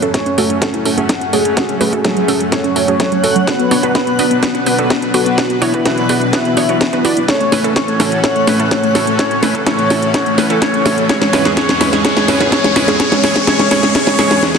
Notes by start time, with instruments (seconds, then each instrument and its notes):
Already playing: supersaw synth F#2 F#3 A3 C#4, synth texture F#5 F#6
0.02 synth pluck A3 C#4 F#4 A4, synth arpeggio sound A4, closed hi-hat
0.14 synth pluck A3 C#4 F#4 A4, synth arpeggio sound C#4, soft synth lead C#5, kick, snare, closed hi-hat
0.26 synth arpeggio sound C#4, closed hi-hat
0.38 synth pluck A3 C#4 F#4 A4, synth arpeggio sound F#4, open hi-hat
0.50 synth arpeggio sound C#4, closed hi-hat
0.62 synth pluck A3 C#4 F#4 A4, kick, snare, closed hi-hat
0.74 synth arpeggio sound E4, closed hi-hat
0.85 synth pluck A3 C#4 F#4 A4, synth arpeggio sound C#4, open hi-hat
0.98 synth pluck A3 C#4 F#4 G#4, closed hi-hat
1.09 synth pluck A3 C#4 F#4 A4, synth arpeggio sound C#4, kick, snare, closed hi-hat
1.21 synth arpeggio sound C#4, closed hi-hat
1.33 synth pluck A3 C#4 F#4 A4, soft synth lead G#4, synth arpeggio sound C#5, open hi-hat
1.45 synth arpeggio sound C#4, closed hi-hat
1.57 synth pluck A3 C#4 F#4 A4, synth arpeggio sound F#4, kick, snare, closed hi-hat
1.69 synth arpeggio sound F#3, closed hi-hat
1.80 synth arpeggio sound F#3, synth pluck A3 C#4 F#4 B4, soft synth lead G#4, open hi-hat
1.93 synth pluck A3 C#4 F#4 A4, synth arpeggio sound F#4, kick, closed hi-hat
2.04 synth arpeggio sound F#3, synth pluck A3 C#4 F#4 A4, kick, snare, closed hi-hat
2.16 synth arpeggio sound F#3, closed hi-hat
2.28 synth pluck A3 C#4 F#4 A4, synth arpeggio sound C#4, open hi-hat
2.40 synth arpeggio sound F#3, closed hi-hat
2.52 synth arpeggio sound F#3, synth pluck A3 C#4 F#4 A4, soft synth lead C#5, kick, snare, closed hi-hat
2.64 synth arpeggio sound C#4, closed hi-hat
2.76 synth arpeggio sound F#3, synth pluck A3 C#4 F#4 A4, open hi-hat
2.88 synth pluck A3 C#4 F#4 G#4, closed hi-hat
3.00 synth arpeggio sound F#3, synth pluck A3 C#4 F#4 A4, kick, snare, closed hi-hat
3.12 synth arpeggio sound F#3, closed hi-hat
3.23 synth pluck A3 C#4 F#4 A4, synth arpeggio sound A4, open hi-hat
3.36 synth arpeggio sound F#3, closed hi-hat
3.47 supersaw synth B2 D4 B4, synth pluck B3 D4 F#4 B4, synth arpeggio sound F#4, soft synth lead B4, kick, snare, closed hi-hat
3.59 synth arpeggio sound B3, closed hi-hat
3.71 synth arpeggio sound B3, synth pluck B3 D4 F#4 C#5, open hi-hat
3.83 synth pluck B3 D4 F#4 B4, synth arpeggio sound F#4, closed hi-hat
3.95 synth pluck B3 D4 F#4 B4, soft synth lead B4, kick, snare, closed hi-hat
4.07 synth arpeggio sound B3, closed hi-hat
4.19 synth pluck B3 D4 F#4 B4, synth arpeggio sound D4, open hi-hat
4.31 synth arpeggio sound B3, closed hi-hat
4.43 synth pluck B3 D4 F#4 B4, kick, snare, closed hi-hat
4.55 synth arpeggio sound C#4, closed hi-hat
4.66 synth arpeggio sound B3, synth pluck B3 D4 F#4 B4, open hi-hat
4.79 synth pluck B3 D4 F#4 A4, closed hi-hat
4.90 synth pluck B3 D4 F#4 B4, synth arpeggio sound B3, kick, snare, closed hi-hat
5.02 synth arpeggio sound B3, closed hi-hat
5.14 synth pluck B3 D4 F#4 B4, soft synth lead F#4, synth arpeggio sound A4, open hi-hat
5.26 synth arpeggio sound B3, closed hi-hat
5.38 synth pluck B3 D4 F#4 B4, synth arpeggio sound B4, kick, snare, closed hi-hat
5.50 synth arpeggio sound B3, closed hi-hat
5.62 synth pluck B3 D4 F#4 C#5, synth arpeggio sound B3, soft synth lead E4, open hi-hat
5.74 synth pluck B3 D4 F#4 B4, synth arpeggio sound B4, kick, closed hi-hat
5.85 synth pluck B3 D4 F#4 B4, synth arpeggio sound B3, kick, snare, closed hi-hat
5.98 synth arpeggio sound B3, closed hi-hat
6.09 synth pluck B3 D4 F#4 B4, synth arpeggio sound G#4, open hi-hat
6.21 synth arpeggio sound B3, closed hi-hat
6.33 synth pluck B3 D4 F#4 B4, synth arpeggio sound B3, soft synth lead E4, kick, snare, closed hi-hat
6.45 synth arpeggio sound F#4, closed hi-hat
6.57 synth arpeggio sound B3, synth pluck B3 D4 F#4 C#5, open hi-hat
6.69 synth pluck B3 D4 F#4 C#5, closed hi-hat
6.81 synth arpeggio sound B3, kick, snare, closed hi-hat
6.93 synth pluck B3 D4 F#4 B4, synth arpeggio sound B3, closed hi-hat
7.05 synth pluck B3 D4 F#4 D5, synth arpeggio sound E4, open hi-hat
7.17 synth arpeggio sound B3, closed hi-hat
7.28 supersaw synth A2 E3 C#4 A4, synth pluck A3 C#4 E4 A4, synth arpeggio sound A4, soft synth lead C#5, kick, snare, closed hi-hat, riser
7.41 synth arpeggio sound A3, closed hi-hat
7.52 synth pluck A3 C#4 E4 B4, synth arpeggio sound A3, snare, open hi-hat
7.64 synth pluck A3 C#4 E4 A4, synth arpeggio sound A4, closed hi-hat
7.76 synth pluck A3 C#4 E4 A4, synth arpeggio sound A3, soft synth lead C#5, kick, snare, closed hi-hat
7.88 synth arpeggio sound A3, closed hi-hat
8.00 synth pluck A3 C#4 E4 A4, synth arpeggio sound F#4, snare, open hi-hat
8.12 synth arpeggio sound A3, closed hi-hat
8.24 synth pluck A3 C#4 E4 A4, synth arpeggio sound A4, soft synth lead C#5, kick, snare, closed hi-hat
8.36 synth arpeggio sound A3, closed hi-hat
8.47 synth pluck A3 C#4 E4 B4, synth arpeggio sound A3, snare, open hi-hat
8.60 synth pluck A3 C#4 E4 A4, synth arpeggio sound A4, closed hi-hat
8.71 synth arpeggio sound A3, synth pluck C#4 E4 A4, soft synth lead C#5, kick, snare, closed hi-hat
8.83 synth arpeggio sound A3, closed hi-hat
8.95 synth pluck A3 C#4 E4 A4, synth arpeggio sound F#4, snare, open hi-hat
9.07 synth arpeggio sound A3, closed hi-hat
9.19 synth pluck A3 C#4 E4 A4, synth arpeggio sound A4, soft synth lead C#5, kick, snare, closed hi-hat
9.31 synth arpeggio sound A3, closed hi-hat
9.43 synth pluck A3 C#4 E4 B4, synth arpeggio sound A3, snare, open hi-hat
9.55 synth pluck A3 C#4 E4 A4, synth arpeggio sound A4, kick, closed hi-hat
9.66 synth pluck A3 C#4 E4 A4, synth arpeggio sound A3, soft synth lead C#5, kick, snare, closed hi-hat
9.79 synth arpeggio sound A3, closed hi-hat
9.90 synth pluck A3 C#4 E4 A4, synth arpeggio sound F#4, snare, open hi-hat
10.02 synth arpeggio sound A3, closed hi-hat
10.14 synth pluck A3 C#4 E4 A4, synth arpeggio sound A4, soft synth lead C#5, kick, snare, closed hi-hat
10.26 synth arpeggio sound A3, closed hi-hat
10.38 synth pluck A3 C#4 E4 B4, synth arpeggio sound A3, snare, open hi-hat
10.50 synth pluck A3 C#4 E4 A4, synth arpeggio sound A4, closed hi-hat
10.62 synth pluck A3 E4 A4, soft synth lead C#5, kick, snare, closed hi-hat
10.74 synth arpeggio sound A3, closed hi-hat
10.85 synth pluck A3 C#4 E4 A4, synth arpeggio sound F#4, snare, open hi-hat
10.98 synth arpeggio sound A3, closed hi-hat
11.09 supersaw synth E2 B3 G#4, synth pluck G#3 C#4 E4 G#4, synth arpeggio sound G#4, soft synth lead C#5, kick, snare, closed hi-hat
11.22 synth arpeggio sound G#3, snare, closed hi-hat
11.33 synth pluck G#3 C#4 E4 B4, synth arpeggio sound G#3, snare, open hi-hat
11.45 synth pluck G#3 C#4 E4 G#4, synth arpeggio sound G#4, snare, closed hi-hat
11.57 synth pluck G#3 C#4 E4 G#4, synth arpeggio sound G#4, soft synth lead C#5, kick, snare, closed hi-hat
11.69 synth arpeggio sound G#3, snare, closed hi-hat
11.81 synth pluck G#3 C#4 E4 B4, synth arpeggio sound G#3, snare, open hi-hat
11.93 synth pluck G#3 C#4 E4 G#4, synth arpeggio sound G#4, snare, closed hi-hat
12.04 synth pluck G#3 C#4 E4 G#4, synth arpeggio sound G#4, soft synth lead C#5, kick, snare, closed hi-hat
12.17 synth arpeggio sound G#3, snare, closed hi-hat
12.28 synth pluck G#3 C#4 E4 B4, synth arpeggio sound G#3, snare, open hi-hat
12.40 synth pluck G#3 C#4 E4 G#4, synth arpeggio sound G#4, snare, closed hi-hat
12.52 synth pluck G#3 C#4 E4 G#4, synth arpeggio sound G#4, soft synth lead C#5, kick, snare, closed hi-hat
12.64 synth arpeggio sound G#3, snare, closed hi-hat
12.76 synth arpeggio sound G#3, synth pluck G#3 C#4 E4 B4, snare, open hi-hat
12.88 synth pluck G#3 C#4 E4 G#4, synth arpeggio sound G#4, snare, closed hi-hat
13.00 synth pluck G#3 C#4 E4 G#4, supersaw synth C#4, synth arpeggio sound G#4, soft synth lead C#5, kick, snare, closed hi-hat
13.12 synth arpeggio sound G#3, snare, closed hi-hat
13.23 synth pluck G#3 C#4 E4 G#4, synth arpeggio sound G#4, soft synth lead C#5, snare, open hi-hat
13.36 synth arpeggio sound G#3, kick, snare, closed hi-hat
13.47 synth pluck G#3 C#4 E4 G#4, synth arpeggio sound G#4, soft synth lead C#5, kick, snare, closed hi-hat
13.59 synth arpeggio sound G#3, snare, closed hi-hat
13.71 synth pluck G#3 C#4 E4 G#4, synth arpeggio sound G#4, soft synth lead C#5, snare, open hi-hat
13.83 synth arpeggio sound G#3, snare, closed hi-hat
13.95 synth pluck G#3 C#4 E4 G#4, synth arpeggio sound G#4, soft synth lead C#5, kick, snare, closed hi-hat
14.07 synth arpeggio sound G#3, snare, closed hi-hat
14.19 synth pluck G#3 C#4 E4 G#4, synth arpeggio sound G#4, soft synth lead C#5, snare, open hi-hat
14.31 synth arpeggio sound G#3, snare, closed hi-hat
14.43 snare
14.55 snare